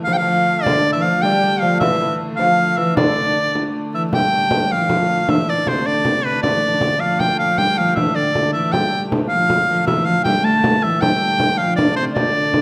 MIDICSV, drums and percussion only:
0, 0, Header, 1, 2, 480
1, 0, Start_track
1, 0, Key_signature, -1, "minor"
1, 0, Tempo, 385356
1, 817, Time_signature, 6, 3, 24, 8
1, 7534, Tempo, 381679
1, 15793, End_track
2, 0, Start_track
2, 0, Title_t, "Frame drum"
2, 91, Note_on_c, 9, 64, 58
2, 216, Note_off_c, 9, 64, 0
2, 825, Note_on_c, 9, 64, 94
2, 949, Note_off_c, 9, 64, 0
2, 1064, Note_on_c, 9, 64, 25
2, 1189, Note_off_c, 9, 64, 0
2, 1300, Note_on_c, 9, 64, 28
2, 1425, Note_off_c, 9, 64, 0
2, 1538, Note_on_c, 9, 64, 64
2, 1663, Note_off_c, 9, 64, 0
2, 2254, Note_on_c, 9, 64, 91
2, 2379, Note_off_c, 9, 64, 0
2, 2499, Note_on_c, 9, 64, 26
2, 2623, Note_off_c, 9, 64, 0
2, 2737, Note_on_c, 9, 64, 31
2, 2862, Note_off_c, 9, 64, 0
2, 2978, Note_on_c, 9, 64, 63
2, 3103, Note_off_c, 9, 64, 0
2, 3699, Note_on_c, 9, 64, 101
2, 3824, Note_off_c, 9, 64, 0
2, 4426, Note_on_c, 9, 64, 63
2, 4551, Note_off_c, 9, 64, 0
2, 5140, Note_on_c, 9, 64, 89
2, 5265, Note_off_c, 9, 64, 0
2, 5383, Note_on_c, 9, 64, 26
2, 5508, Note_off_c, 9, 64, 0
2, 5615, Note_on_c, 9, 64, 91
2, 5739, Note_off_c, 9, 64, 0
2, 6096, Note_on_c, 9, 64, 84
2, 6220, Note_off_c, 9, 64, 0
2, 6582, Note_on_c, 9, 64, 89
2, 6706, Note_off_c, 9, 64, 0
2, 6825, Note_on_c, 9, 64, 26
2, 6950, Note_off_c, 9, 64, 0
2, 7058, Note_on_c, 9, 64, 81
2, 7183, Note_off_c, 9, 64, 0
2, 7533, Note_on_c, 9, 64, 81
2, 7659, Note_off_c, 9, 64, 0
2, 8020, Note_on_c, 9, 64, 82
2, 8146, Note_off_c, 9, 64, 0
2, 8254, Note_on_c, 9, 64, 22
2, 8380, Note_off_c, 9, 64, 0
2, 8491, Note_on_c, 9, 64, 78
2, 8617, Note_off_c, 9, 64, 0
2, 8982, Note_on_c, 9, 64, 73
2, 9107, Note_off_c, 9, 64, 0
2, 9459, Note_on_c, 9, 64, 66
2, 9584, Note_off_c, 9, 64, 0
2, 9709, Note_on_c, 9, 64, 21
2, 9835, Note_off_c, 9, 64, 0
2, 9951, Note_on_c, 9, 64, 80
2, 10077, Note_off_c, 9, 64, 0
2, 10431, Note_on_c, 9, 64, 74
2, 10557, Note_off_c, 9, 64, 0
2, 10913, Note_on_c, 9, 64, 81
2, 11039, Note_off_c, 9, 64, 0
2, 11158, Note_on_c, 9, 64, 25
2, 11284, Note_off_c, 9, 64, 0
2, 11396, Note_on_c, 9, 64, 89
2, 11522, Note_off_c, 9, 64, 0
2, 11869, Note_on_c, 9, 64, 79
2, 11995, Note_off_c, 9, 64, 0
2, 12346, Note_on_c, 9, 64, 94
2, 12472, Note_off_c, 9, 64, 0
2, 12587, Note_on_c, 9, 64, 25
2, 12713, Note_off_c, 9, 64, 0
2, 12823, Note_on_c, 9, 64, 82
2, 12949, Note_off_c, 9, 64, 0
2, 13306, Note_on_c, 9, 64, 91
2, 13432, Note_off_c, 9, 64, 0
2, 13790, Note_on_c, 9, 64, 91
2, 13916, Note_off_c, 9, 64, 0
2, 14028, Note_on_c, 9, 64, 26
2, 14153, Note_off_c, 9, 64, 0
2, 14258, Note_on_c, 9, 64, 82
2, 14384, Note_off_c, 9, 64, 0
2, 14747, Note_on_c, 9, 64, 85
2, 14873, Note_off_c, 9, 64, 0
2, 15222, Note_on_c, 9, 64, 88
2, 15348, Note_off_c, 9, 64, 0
2, 15693, Note_on_c, 9, 64, 81
2, 15793, Note_off_c, 9, 64, 0
2, 15793, End_track
0, 0, End_of_file